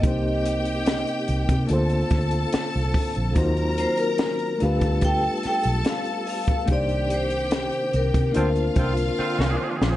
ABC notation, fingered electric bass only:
X:1
M:4/4
L:1/16
Q:1/4=72
K:Bb
V:1 name="Fingered electric bass" clef=bass
C,,4- C,, z C,, C, D,,2 D,,2 z C,, z B,,, | E,,3 z3 D,,4 z =B,,, z4 | C,,4- C,, z C,, C, D,,2 C,,2 z C,, z B,,, |]